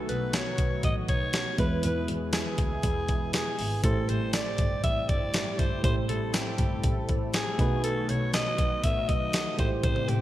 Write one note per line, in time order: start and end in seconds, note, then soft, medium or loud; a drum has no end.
0.00 0.30 B2 medium
0.00 1.57 D#3 medium
0.00 1.57 F#3 medium
0.00 1.54 A3 medium
0.00 1.55 A3 medium
0.00 1.57 B3 medium
0.00 1.55 D#4 medium
0.00 1.55 F#4 medium
0.00 1.57 F#4 medium
0.00 1.55 B4 medium
0.09 0.28 B1 loud
0.09 0.36 B4 medium
0.09 closed hi-hat medium
0.33 0.84 C#5 loud
0.33 snare loud
0.33 closed hi-hat loud
0.58 0.77 B1 medium
0.58 kick medium
0.58 closed hi-hat medium
0.83 1.02 A1 loud
0.83 0.96 D#5 loud
0.83 kick medium
0.83 closed hi-hat medium
1.09 1.28 B1 medium
1.09 1.55 C#5 loud
1.09 kick medium
1.09 closed hi-hat medium
1.33 snare loud
1.33 closed hi-hat medium
1.57 1.77 E2 loud
1.57 3.81 B2 medium
1.57 3.81 E3 medium
1.57 2.30 E3 medium
1.57 3.54 G#3 medium
1.57 3.81 G#3 medium
1.57 3.54 B3 medium
1.57 3.81 E4 medium
1.57 3.55 E4 medium
1.57 3.81 G#4 medium
1.57 1.82 B4 medium
1.57 3.55 B4 medium
1.57 kick loud
1.57 closed hi-hat medium
1.83 2.02 E2 loud
1.83 2.07 B4 medium
1.83 closed hi-hat loud
2.08 2.27 E2 loud
2.08 closed hi-hat medium
2.33 3.30 G#4 medium
2.33 snare loud
2.33 closed hi-hat loud
2.33 tambourine medium
2.58 2.77 D2 medium
2.58 kick loud
2.58 closed hi-hat medium
2.83 3.02 E2 loud
2.83 kick medium
2.83 closed hi-hat medium
3.09 3.28 E2 medium
3.09 kick medium
3.09 closed hi-hat medium
3.33 3.80 G#4 medium
3.33 snare loud
3.33 closed hi-hat medium
3.33 tambourine medium
3.59 3.77 G#1 medium
3.59 open hi-hat medium
3.83 4.02 A1 loud
3.83 4.55 A2 medium
3.83 7.55 C3 medium
3.83 7.55 G3 medium
3.83 5.79 A3 medium
3.83 10.21 A3 medium
3.83 5.80 E4 medium
3.83 7.55 E4 medium
3.83 5.82 G4 medium
3.83 5.80 G4 medium
3.83 4.11 A4 loud
3.83 5.81 C5 medium
3.83 kick loud
3.83 closed hi-hat loud
4.09 4.28 A1 loud
4.09 4.33 C5 medium
4.09 closed hi-hat medium
4.33 4.80 D5 medium
4.33 snare loud
4.33 closed hi-hat loud
4.33 tambourine medium
4.58 4.77 G1 medium
4.58 kick medium
4.58 closed hi-hat medium
4.84 5.03 A1 loud
4.84 5.11 E5 loud
4.84 kick medium
4.84 closed hi-hat medium
5.09 5.28 G1 medium
5.09 5.61 D5 loud
5.09 kick medium
5.09 closed hi-hat medium
5.34 snare loud
5.34 closed hi-hat medium
5.34 tambourine medium
5.59 5.78 G1 medium
5.59 5.84 C5 medium
5.59 kick loud
5.59 closed hi-hat medium
5.83 6.03 A1 loud
5.83 6.55 A2 medium
5.83 7.55 A3 medium
5.83 7.55 E4 medium
5.83 7.56 G4 medium
5.83 7.57 A4 loud
5.83 5.95 C5 loud
5.83 7.56 C5 medium
5.83 kick loud
5.83 closed hi-hat loud
6.09 6.27 A1 loud
6.09 6.36 A4 medium
6.09 closed hi-hat medium
6.34 7.07 G4 medium
6.34 snare loud
6.34 closed hi-hat loud
6.34 tambourine medium
6.58 6.78 G1 medium
6.58 kick medium
6.58 closed hi-hat medium
6.84 7.02 A1 loud
6.84 kick medium
6.84 closed hi-hat loud
7.09 7.28 A1 medium
7.09 kick medium
7.09 closed hi-hat medium
7.34 7.81 G#4 medium
7.34 snare loud
7.34 closed hi-hat medium
7.34 tambourine medium
7.58 7.96 B1 loud
7.58 8.30 B2 medium
7.58 9.57 D#3 medium
7.58 9.57 F#3 medium
7.58 9.55 A3 medium
7.58 9.57 B3 medium
7.58 9.55 D#4 medium
7.58 9.57 F#4 medium
7.58 9.55 F#4 medium
7.58 9.56 B4 medium
7.58 kick loud
7.58 closed hi-hat medium
7.84 8.11 A4 loud
7.84 closed hi-hat loud
8.09 8.28 B1 medium
8.09 8.33 C#5 medium
8.09 closed hi-hat medium
8.34 8.85 D#5 loud
8.34 snare loud
8.34 closed hi-hat medium
8.34 tambourine medium
8.58 8.77 B1 medium
8.58 kick medium
8.58 closed hi-hat medium
8.84 9.02 A1 medium
8.84 9.10 E5 loud
8.84 kick medium
8.84 closed hi-hat loud
9.09 9.28 B1 medium
9.09 9.58 D#5 loud
9.09 kick medium
9.09 closed hi-hat medium
9.33 snare loud
9.33 closed hi-hat medium
9.33 tambourine medium
9.58 9.78 A1 loud
9.58 10.21 A2 medium
9.58 10.21 E3 medium
9.58 10.21 G3 medium
9.58 10.21 A3 medium
9.58 10.21 C4 medium
9.58 10.21 E4 medium
9.58 10.21 G4 medium
9.58 9.70 C5 medium
9.58 10.21 C5 medium
9.58 kick medium
9.58 closed hi-hat medium
9.83 10.02 A1 loud
9.83 10.10 C5 loud
9.83 kick loud
9.83 closed hi-hat loud
9.83 high tom medium
9.96 high tom medium
10.08 10.21 A1 loud
10.08 10.21 G4 medium
10.08 closed hi-hat medium
10.08 high tom medium